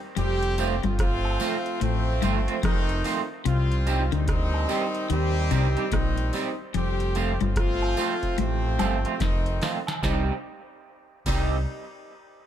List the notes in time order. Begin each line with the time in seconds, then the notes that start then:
0.16 F1 F2 G3 A3 C4 G4, closed hi-hat
0.43 closed hi-hat
0.58 F3 A3 C4 F4, closed hi-hat, tambourine
0.83 G1 G2 F3 A3 C4 F4, closed hi-hat
0.99 F3 A3 C4 F4, kick, cross-stick, closed hi-hat
1.25 high woodblock
1.40 F3 A3 C4 F4, open hi-hat, tambourine
1.66 closed hi-hat
1.81 A1 A2 F3 A3 C4, closed hi-hat
2.22 G1 G2 F3 A3 C4 F4, closed hi-hat, tambourine
2.48 F3 A3 C4 F4, closed hi-hat
2.63 F1 F2 D#3 A3 C4 D#4, kick, cross-stick, closed hi-hat
2.89 closed hi-hat
3.04 F3 A3 C4 F4, open hi-hat, tambourine
3.45 C2 C3 F3 G3 C4 F4, closed hi-hat
3.72 closed hi-hat
3.86 G3 C4 D#4 G4, closed hi-hat, tambourine
4.12 D2 D3 D#3 G3 C4 D#4, closed hi-hat
4.28 D#3 G3 C4 D#4, kick, cross-stick, closed hi-hat
4.54 high woodblock
4.68 G3 C4 D#4 G4, open hi-hat, tambourine
4.95 closed hi-hat
5.10 D#2 C3 D#3 G3 C4, closed hi-hat
5.51 C2 C3 G3 C4 D#4 G4, closed hi-hat, tambourine
5.77 G3 C4 D#4 G4, closed hi-hat
5.92 A#1 A#2 D#3 G3 C4 D#4, kick, cross-stick, closed hi-hat
6.17 closed hi-hat
6.33 G3 C4 D#4 G4, open hi-hat, tambourine
6.74 F1 F2 G3 A3 C4 G4, closed hi-hat
7.00 closed hi-hat
7.15 F3 A3 C4 F4, closed hi-hat, tambourine
7.41 G1 G2 F3 A3 C4 F4, closed hi-hat
7.56 F3 A3 C4 F4, kick, cross-stick, closed hi-hat
7.82 high woodblock
7.97 F3 A3 C4 F4, open hi-hat, tambourine
8.23 kick, closed hi-hat
8.38 A1 A2 C3 F3 A3 C4, closed hi-hat
8.79 G1 G2 F3 A3 C4 F4, closed hi-hat, tambourine, high woodblock
9.05 F3 A3 C4 F4, closed hi-hat
9.20 F1 F2 D#3 A3 C4 D#4, kick, snare, closed hi-hat
9.46 closed hi-hat
9.62 F3 A3 C4 F4, snare, open hi-hat, tambourine
9.87 snare, high woodblock
10.03 C2 C3 D#3 G3 C4 D#4 G4, kick, snare, tambourine
11.26 C2 C3 D#3 G3 C4 D#4 G4, kick, crash, tambourine